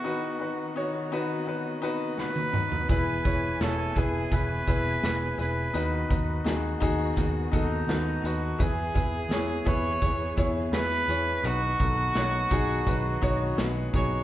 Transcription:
<<
  \new Staff \with { instrumentName = "Trumpet" } { \time 4/4 \key e \major \tempo 4 = 84 fis'4 r2 b'4 | b'4 a'8 gis'8 b'4. b'8~ | b'4 r4. dis'4 fis'8 | gis'4. cis''4 r8 b'4 |
fis'2. r8 cis''8 | }
  \new Staff \with { instrumentName = "Upright piano" } { \time 4/4 \key e \major <dis' fis' b'>8 <dis' fis' b'>8 <dis' fis' cis''>8 <dis' fis' b'>8 <dis' fis' b'>8 <dis' fis' b'>8 <dis' fis' b'>8 <dis' fis' b'>8 | <e' gis' b'>8 <e' gis' cis''>8 <e' gis' cis''>8 <e' gis' b'>8 <e' gis' b'>8 <e' gis' b'>8 <e' gis' b'>8 <e' gis' b'>8 | <dis' fis' b'>8 <dis' fis' b'>8 <dis' fis' gis'>8 <dis' fis' gis'>8 <dis' fis' gis'>8 <dis' fis' a'>8 <dis' fis' b'>8 <dis' fis' b'>8 | <e' gis' b'>8 <e' gis' b'>8 <e' gis' cis''>8 <e' gis' b'>8 <e' gis' cis''>8 <e' gis' cis''>8 <e' gis' b'>8 <e' gis' cis''>8 |
<dis' fis' b'>8 <dis' fis' a'>8 <dis' fis' cis''>8 <dis' fis' gis'>8 <dis' fis' b'>8 <dis' fis' cis''>8 <dis' fis' b'>8 <dis' fis' gis'>8 | }
  \new Staff \with { instrumentName = "Upright piano" } { \clef bass \time 4/4 \key e \major dis4. r2 r8 | e4. r2 r8 | dis4. r2 r8 | e4. r2 r8 |
b,4. r2 r8 | }
  \new Staff \with { instrumentName = "String section" } { \time 4/4 \key e \major << { <dis fis'>1 | <e gis''>1 | <dis fis'>1 | <e gis'>1 |
<dis fis'>1 | } \\ { b1~ | b1~ | b1 | b1~ |
b1 | } >> }
  \new Staff \with { instrumentName = "Picked electric bass" } { \clef bass \time 4/4 \key e \major r1 | e,,8 e,,8 e,,8 e,,8 e,,8 e,,8 e,,8 e,,8 | dis,8 dis,8 dis,8 dis,8 dis,8 dis,8 dis,8 dis,8 | e,8 e,8 e,8 e,8 e,8 e,8 e,8 e,8 |
b,,8 b,,8 b,,8 b,,8 b,,8 b,,8 b,,8 b,,8 | }
  \new DrumStaff \with { instrumentName = "Drums" } \drummode { \time 4/4 r4 r4 r4 sn16 tommh16 toml16 tomfh16 | <hh bd>8 <hh bd>8 <hh sn>8 <hh bd>8 <hh bd>8 <hh bd>8 <hh sn>8 hh8 | hh8 <hh bd>8 <hh sn>8 <hh bd>8 <hh bd>8 <hh bd>8 <hh sn>8 hh8 | <hh bd>8 <hh bd>8 <hh sn>8 <hh bd>8 <hh bd>8 <hh bd>8 <hh sn>16 sn16 hh8 |
hh8 <hh bd>8 <hh sn>8 <hh bd>8 <hh bd>8 <hh bd>8 <hh sn>8 <hh bd>8 | }
>>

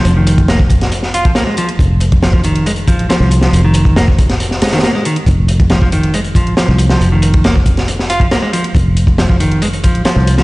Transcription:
<<
  \new Staff \with { instrumentName = "Clean electric guitar" } { \clef bass \time 4/4 \key f \minor \tempo 4 = 138 f16 ees8. bes16 r4 r16 f'16 f16 bes16 aes16 f16 r16 | r4 f16 f16 ees8 aes16 r16 f8 f8. f16~ | f16 ees8. bes16 r4 r16 aes16 ees16 bes16 aes16 ees16 r16 | r4 f16 f16 ees8 aes16 r16 f8 f8. f16~ |
f16 ees8. bes16 r4 r16 f'16 f16 bes16 aes16 f16 r16 | r4 f16 f16 ees8 aes16 r16 f8 f8. f16 | }
  \new Staff \with { instrumentName = "Fingered electric bass" } { \clef bass \time 4/4 \key f \minor f,,2. r4 | f,,2. r16 c,8 r16 | f,,2. r4 | f,,2. r16 c,8 r16 |
f,,2. r4 | f,,2. r16 c,8 r16 | }
  \new DrumStaff \with { instrumentName = "Drums" } \drummode { \time 4/4 hh8 hh16 <hh bd>16 <hh sn>16 bd16 <hh bd>16 <hh sn>16 hh16 sn16 hh16 <hh bd>16 <hh sn>8 hh16 hh16 | <hh bd>8 hh16 <hh bd>16 <hh sn>16 bd16 hh16 hh16 hh16 hh16 <hh bd>16 hh16 <hh sn>8 hh16 <hh sn>16 | hh8 hh16 <hh bd>16 <hh sn>16 bd16 <hh bd>16 <hh sn>16 hh16 sn16 <hh sn>32 <hh sn>32 <hh sn>32 <hh sn>32 <hh sn>8 hh16 hh16 | <hh bd>8 hh16 <hh bd>16 <hh sn>16 bd16 hh16 hh16 hh16 hh16 <hh bd>16 hh16 <hh sn>8 hh16 <hh sn>16 |
hh8 hh16 <hh bd>16 <hh sn>16 bd16 <hh bd>16 <hh sn>16 hh16 sn16 hh16 <hh bd>16 <hh sn>8 hh16 hh16 | <hh bd>8 hh16 <hh bd>16 <hh sn>16 bd16 hh16 hh16 hh16 hh16 <hh bd>16 hh16 <hh sn>8 hh16 <hh sn>16 | }
>>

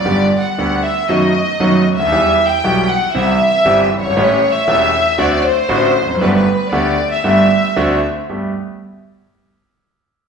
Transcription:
<<
  \new Staff \with { instrumentName = "Violin section" } { \time 4/4 \key g \major \tempo 4 = 117 \tuplet 3/2 { d''4 fis''8~ } fis''8 e''8 dis''4~ \tuplet 3/2 { dis''8. r16 e''8~ } | \tuplet 3/2 { e''4 g''8~ } g''8 fis''8 e''4~ \tuplet 3/2 { e''8. r16 cis''8~ } | \tuplet 3/2 { cis''4 e''8~ } e''4 d''8 c''4. | b'16 b'8. d''8. e''16 e''4. r8 |
r1 | }
  \new Staff \with { instrumentName = "Grand piano" } { \clef bass \time 4/4 \key g \major <g,, g, d g b g'>8 r8 <d, d g b g'>8 r8 <fis, dis fis a b fis'>8 r8 <fis, dis fis a b fis'>8 r32 cis,32 d,32 dis,32 | <e, e g b g'>8 r8 <b,, b, e g b g'>8 r8 <c, c e g c' g'>8 r8 <g,, g, e g c' g'>8 r32 fis,,32 g,,32 aes,,32 | <a,, a, e a cis' g'>8 r8 <e,, e, e a cis' g'>8 r8 <d, d a c' fis'>8 r8 <a,, a, d a c' fis'>8 r32 e,32 f,32 fis,32 | <g,, g, d a b g'>8 r8 <d, d a b g'>8 r8 <g,, g, d a b g'>8 r8 <d, d a c' fis'>8 r8 |
<g, a b g'>8 r2. r8 | }
>>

